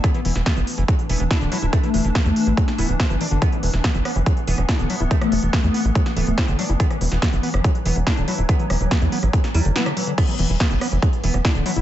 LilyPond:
<<
  \new Staff \with { instrumentName = "Oud" } { \time 4/4 \key c \lydian \tempo 4 = 142 b8 r8 b8 r4 b8 d'8 e'8 | a8 r8 a8 r4 b8 c'8 d'8 | b8 r8 b8 r4 b8 d'8 e'8 | a8 r8 a8 r4 a8 c'8 d'8 |
b8 r8 b8 r4 b8 d'8 e'8 | b8 r8 b8 r4 g8 e8 e8 | b8 r8 b8 r4 b8 d'8 e'8 | }
  \new Staff \with { instrumentName = "Ambient pad" } { \clef bass \time 4/4 \key c \lydian <e d'>1~ | <e d'>1 | b1~ | b1 |
fis1~ | fis1 | <e b>1 | }
  \new Staff \with { instrumentName = "Acid bass" } { \clef bass \time 4/4 \key c \lydian e16 e16 e16 e16 e16 e16 r16 e16 fis16 r16 e16 e16 e'16 d16 fis16 e'16 | e16 e16 e16 e16 e16 e16 r16 e16 fis16 r16 e'16 e16 e16 e16 e16 d16 | e16 e16 e16 e16 e16 e16 b16 e16 fis16 r16 e16 e16 e'16 d16 fis16 e'16 | e16 e16 e16 e16 e16 e16 b16 e16 fis16 r16 e16 e16 e'16 d16 fis16 e'16 |
e16 e16 e16 e16 e16 e16 b16 e16 fis16 r16 e16 e16 e'16 d16 fis16 e'16 | e16 e16 e16 e16 e16 e16 b16 e16 fis16 r16 e'16 d16 b16 d16 fis16 d16 | e16 e16 e16 e16 e16 e16 b16 e16 fis16 r16 e16 e16 e'16 d16 fis16 e'16 | }
  \new Staff \with { instrumentName = "Analog synth bass" } { \clef bass \time 4/4 \key c \lydian r8 e,,16 e,,16 r16 fis,,16 r16 fis,,16 r8 e,,16 e,,16 r16 d,,16 r16 d,,16 | r8 e,,16 e,,16 r16 e,16 r16 a,,16 r8 d,,16 d,,16 r16 g,,16 r16 g,,16 | r8 e,,16 e,,16 r16 fis,,16 r16 fis,,16 r8 e,,16 e,,16 r16 d,,16 r16 d,,16 | r8 e,,16 e,,16 r16 e,16 r16 a,,16 r8 d,,16 d,,16 r16 fis,,16 r16 fis,,16 |
r8 e,,16 e,,16 r16 fis,,16 r16 fis,,16 r8 e,,16 e,,16 r16 d,,16 r16 d,,16 | r8 e,,16 e,,16 r16 e,16 r16 a,,16 r8 e,16 fis,,16 r4 | r8 e,,16 e,,16 r16 fis,,16 r16 fis,,16 r8 e,,16 e,,16 r16 d,,16 r16 d,,16 | }
  \new DrumStaff \with { instrumentName = "Drums" } \drummode { \time 4/4 <hh bd>16 hh16 hho16 sn16 <hh bd sn>16 hh16 hho16 hh16 <hh bd>16 hh16 hho16 hh16 <hh bd sn>16 hh16 hho16 hh16 | <hh bd>16 hh16 hho16 hh16 <hh bd sn>16 hh16 hho16 hh16 <hh bd>16 <hh sn>16 hho16 hh16 <hh bd sn>16 hh16 hho16 hh16 | <hh bd ss>16 hh16 hho16 <hh sn>16 <hh bd sn>16 hh16 <hho ss>16 hh16 <hh bd>16 hh16 hho16 ss16 <hh bd sn>16 hh16 hho16 hh16 | <hh bd>16 <hh ss>16 hho16 hh16 <hh bd sn>16 hh16 hho16 hh16 <hh bd>16 <hh sn>16 hho16 hh16 <hh bd ss sn>16 hh16 hho16 hh16 |
<hh bd>16 <hh ss>16 hho16 <hh sn>16 <hh bd sn>16 hh16 hho16 <hh ss>16 <hh bd>16 hh16 hho16 hh16 <hh bd ss sn>16 hh16 hho16 hh16 | <hh bd>16 hh16 <hho ss>16 hh16 <hh bd sn>16 hh16 hho16 <hh ss>16 <hh bd>16 <hh sn>16 hho16 hh16 <hh sn>16 <hh ss>16 hho16 hh16 | <cymc hh bd ss>16 hh16 hho16 hh16 <hh bd sn>16 hh16 <hho ss>16 hh16 <hh bd>16 hh16 hho16 <hh ss>16 <hh bd sn>16 hh16 hho16 hh16 | }
>>